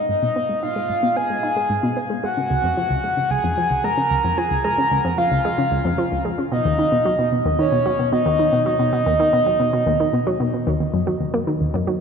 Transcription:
0.09 0.17 G#2 medium
0.09 0.59 D#5 medium
0.22 0.31 B2 medium
0.36 0.44 B3 medium
0.49 0.58 G#3 medium
0.63 0.68 D#4 medium
0.63 1.18 F5 loud
0.76 0.89 G#3 medium
0.90 0.98 G#2 medium
1.03 1.11 B2 loud
1.16 1.25 B3 medium
1.16 1.97 G#5 loud
1.30 1.38 G#3 medium
1.43 1.48 D#4 medium
1.57 1.69 G#3 medium
1.70 1.78 G#2 medium
1.83 1.92 B2 medium
1.97 2.05 B3 medium
2.10 2.18 G#3 medium
2.24 2.29 G#3 medium
2.24 3.32 F#5 loud
2.37 2.50 C#3 medium
2.50 2.59 C#2 medium
2.64 2.72 F2 medium
2.77 2.85 F3 medium
2.90 2.99 C#2 medium
3.04 3.09 G#3 medium
3.17 3.30 C#3 medium
3.30 3.39 C#2 medium
3.30 3.86 G#5 loud
3.44 3.52 F2 loud
3.57 3.66 F3 medium
3.71 3.79 C#2 medium
3.84 3.89 G#3 medium
3.84 4.39 A#5 loud
3.97 4.10 C#3 medium
4.11 4.19 C#2 medium
4.24 4.33 F2 loud
4.38 4.46 F3 medium
4.38 4.66 G#5 loud
4.51 4.59 C#2 medium
4.64 4.70 G#3 medium
4.64 5.17 A#5 loud
4.78 4.91 C#3 medium
4.91 5.00 C#2 medium
5.05 5.13 F2 loud
5.18 5.26 F3 medium
5.18 6.21 F5 medium
5.32 5.40 C#2 medium
5.45 5.50 G#3 medium
5.58 5.71 C#3 medium
5.71 5.80 C#2 medium
5.85 5.93 F2 loud
5.98 6.07 F3 medium
6.12 6.20 C#2 medium
6.25 6.30 G#3 medium
6.38 6.51 C#3 medium
6.52 6.60 B2 medium
6.52 7.28 D#5 loud
6.65 6.74 D#2 loud
6.79 6.87 D#3 medium
6.92 7.00 B2 medium
7.05 7.10 F#3 medium
7.19 7.31 B2 medium
7.32 7.41 B2 medium
7.46 7.54 D#2 loud
7.59 7.67 D#3 medium
7.59 8.09 C#5 loud
7.72 7.81 B2 medium
7.86 7.91 F#3 medium
7.99 8.11 B2 medium
8.12 8.21 B2 medium
8.12 8.62 D#5 loud
8.26 8.34 D#2 loud
8.39 8.48 D#3 medium
8.53 8.61 B2 medium
8.66 8.71 F#3 medium
8.66 10.23 D#5 loud
8.79 8.92 B2 medium
8.93 9.01 B2 medium
9.06 9.15 D#2 loud
9.20 9.28 D#3 medium
9.33 9.42 B2 medium
9.46 9.52 F#3 medium
9.60 9.72 B2 medium
9.73 9.82 B2 medium
9.87 9.95 D#2 loud
10.00 10.09 D#3 medium
10.13 10.22 B2 medium
10.27 10.32 F#3 medium
10.40 10.52 B2 medium
10.54 10.62 B2 medium
10.67 10.75 D#2 loud
10.80 10.89 D#2 medium
10.94 11.02 F#2 loud
11.07 11.16 F#3 medium
11.20 11.29 D#2 medium
11.34 11.39 A#3 medium
11.47 11.60 D#3 medium
11.61 11.69 D#2 medium
11.74 11.83 F#2 loud
11.87 11.96 F#3 medium

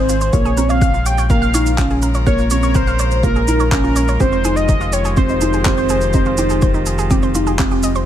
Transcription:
0.00 0.31 G#1 medium
0.00 0.33 D#3 medium
0.00 0.33 G#3 medium
0.00 0.11 C4 medium
0.00 0.34 F4 medium
0.00 1.59 G#4 medium
0.00 0.34 C5 medium
0.09 0.12 F4 medium
0.09 shaker medium
0.21 0.26 C5 medium
0.21 shaker soft
0.32 4.18 A#1 medium
0.32 4.21 C#3 medium
0.32 0.46 A#3 medium
0.32 0.36 F4 medium
0.32 0.71 C#5 loud
0.32 kick loud
0.32 shaker soft
0.43 8.06 G#3 medium
0.43 0.53 G#4 loud
0.43 shaker soft
0.57 0.84 C4 medium
0.57 0.63 A#4 medium
0.57 shaker medium
0.69 0.73 C#5 medium
0.69 1.07 F5 loud
0.69 shaker soft
0.81 0.89 F5 loud
0.81 kick loud
0.81 shaker soft
0.86 8.06 F4 medium
0.94 0.99 F4 medium
0.94 shaker soft
1.06 1.11 C#5 medium
1.06 1.29 G5 loud
1.06 shaker medium
1.18 1.23 C#5 medium
1.18 shaker soft
1.28 1.43 A#3 medium
1.28 4.95 A#4 medium
1.28 1.38 A#4 loud
1.28 1.99 F5 loud
1.28 kick loud
1.28 shaker soft
1.42 1.45 F5 loud
1.42 shaker soft
1.54 1.67 D#4 medium
1.54 1.59 C#5 loud
1.54 shaker medium
1.66 shaker soft
1.78 2.05 C#4 medium
1.78 1.81 F4 medium
1.78 kick loud
1.78 clap medium
1.78 shaker soft
1.90 1.98 G#4 loud
1.90 shaker soft
2.02 2.08 A#4 medium
2.02 shaker medium
2.14 2.18 C#5 medium
2.14 shaker soft
2.26 2.40 A#3 loud
2.26 2.49 C#5 loud
2.26 2.34 F5 loud
2.26 kick loud
2.26 shaker soft
2.38 2.44 F4 medium
2.38 shaker soft
2.51 2.77 C4 medium
2.51 2.77 C#5 medium
2.51 2.56 C#5 medium
2.51 shaker medium
2.63 2.68 C#5 medium
2.63 shaker soft
2.75 2.83 A#4 loud
2.75 3.23 C5 loud
2.75 kick loud
2.75 shaker soft
2.87 2.90 F5 loud
2.87 shaker soft
2.99 3.05 C#5 loud
2.99 shaker medium
3.11 shaker soft
3.23 3.37 A#3 medium
3.23 3.27 F4 medium
3.23 3.68 A#4 medium
3.23 kick loud
3.23 shaker soft
3.36 3.43 G#4 loud
3.36 shaker soft
3.48 3.61 D#4 medium
3.48 3.53 A#4 medium
3.48 shaker medium
3.60 3.63 C#5 medium
3.60 shaker soft
3.71 3.98 C#4 loud
3.71 4.22 A#4 loud
3.71 3.80 F5 loud
3.71 kick loud
3.71 clap medium
3.71 shaker soft
3.84 3.89 F4 medium
3.84 shaker soft
3.96 4.01 C#5 medium
3.96 shaker medium
4.08 4.14 C#5 medium
4.08 shaker soft
4.20 8.05 F1 medium
4.20 8.06 D#3 loud
4.20 4.34 C4 loud
4.20 4.28 G4 loud
4.20 4.57 C5 loud
4.20 kick loud
4.20 shaker soft
4.32 4.36 C5 medium
4.32 shaker soft
4.44 4.71 D#4 medium
4.44 4.50 G#4 loud
4.44 shaker medium
4.56 8.06 G4 medium
4.56 4.94 D#5 loud
4.56 shaker soft
4.69 4.72 D#4 medium
4.69 kick loud
4.69 shaker soft
4.81 4.88 F4 loud
4.81 shaker soft
4.93 4.98 G4 medium
4.93 5.16 C#5 loud
4.93 shaker medium
5.05 5.08 G#4 medium
5.05 shaker soft
5.17 5.30 C4 medium
5.17 7.55 C5 loud
5.17 5.25 C5 loud
5.17 kick loud
5.17 shaker soft
5.29 5.35 D#4 medium
5.29 shaker soft
5.41 5.55 D#4 medium
5.41 5.47 G#4 medium
5.41 shaker medium
5.53 5.59 G#4 medium
5.53 shaker soft
5.65 5.92 C4 medium
5.65 5.73 G4 loud
5.65 kick loud
5.65 clap medium
5.65 shaker soft
5.77 5.81 C5 loud
5.77 shaker soft
5.89 5.95 G#4 loud
5.89 shaker medium
6.01 shaker soft
6.13 6.27 C4 loud
6.13 6.17 D#4 medium
6.13 kick loud
6.13 shaker soft
6.26 6.34 F4 loud
6.26 shaker soft
6.37 6.65 D#4 medium
6.37 6.43 G4 medium
6.37 shaker medium
6.50 6.53 G#4 medium
6.50 shaker soft
6.62 6.70 C5 loud
6.62 kick loud
6.62 shaker soft
6.74 6.79 D#4 medium
6.74 shaker soft
6.86 6.92 G#4 medium
6.86 shaker medium
6.98 7.04 G#4 medium
6.98 shaker soft
7.11 7.24 C4 medium
7.11 7.18 G4 loud
7.11 kick loud
7.11 shaker soft
7.23 7.26 C5 loud
7.23 shaker soft
7.35 7.48 D#4 medium
7.35 7.40 F4 medium
7.35 shaker medium
7.47 7.52 G#4 medium
7.47 shaker soft
7.59 7.85 C4 medium
7.59 7.64 G4 medium
7.59 kick loud
7.59 clap medium
7.59 shaker soft
7.71 7.74 G4 medium
7.71 shaker soft
7.83 7.91 D#5 loud
7.83 shaker medium
7.95 7.99 C5 medium
7.95 shaker soft

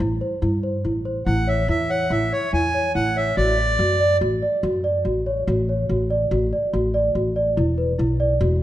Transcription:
0.00 0.20 A1 medium
0.00 0.14 E4 medium
0.21 0.35 C5 medium
0.42 0.82 G2 medium
0.42 0.56 E4 medium
0.63 0.77 C5 medium
0.84 1.24 A1 medium
0.84 0.98 E4 medium
1.05 1.19 C5 medium
1.26 1.66 A1 medium
1.26 1.40 E4 medium
1.26 1.48 F#5 medium
1.47 1.61 C#5 medium
1.47 1.67 E5 medium
1.68 2.08 E2 medium
1.68 1.83 E4 medium
1.68 1.91 E5 medium
1.90 2.04 C#5 medium
1.90 2.12 F#5 medium
2.10 2.30 A1 medium
2.10 2.25 E4 medium
2.10 2.33 E5 medium
2.32 2.52 C#5 medium
2.32 2.46 C#5 medium
2.53 2.92 E2 medium
2.53 2.67 E4 medium
2.53 2.92 G#5 medium
2.74 2.88 C#5 medium
2.95 3.35 A1 medium
2.95 3.09 E4 medium
2.95 3.17 F#5 medium
3.16 3.30 C#5 medium
3.16 3.36 E5 medium
3.37 3.77 A1 medium
3.37 3.51 F#4 medium
3.37 4.17 D5 medium
3.58 3.72 D5 medium
3.79 4.19 F#2 medium
3.79 3.93 F#4 medium
4.00 4.14 D5 medium
4.21 4.41 A1 medium
4.21 4.35 F#4 medium
4.42 4.56 D5 medium
4.63 5.03 F#2 medium
4.63 4.77 F#4 medium
4.84 4.98 D5 medium
5.05 5.44 A1 medium
5.05 5.19 F#4 medium
5.26 5.40 C#5 medium
5.47 5.87 A1 medium
5.47 5.61 F#4 medium
5.69 5.83 C#5 medium
5.89 6.29 A1 medium
5.89 6.04 F#4 medium
6.10 6.24 D5 medium
6.31 6.51 A1 medium
6.31 6.45 F#4 medium
6.53 6.66 D5 medium
6.73 7.13 A1 medium
6.73 6.87 F#4 medium
6.94 7.08 D5 medium
7.15 7.54 A1 medium
7.15 7.29 F#4 medium
7.36 7.50 D5 medium
7.57 7.96 E1 medium
7.57 7.71 E4 medium
7.78 7.92 B4 medium
7.99 8.38 B1 medium
7.99 8.12 E4 medium
8.20 8.34 D5 medium
8.41 8.60 E1 medium
8.41 8.54 F#4 medium

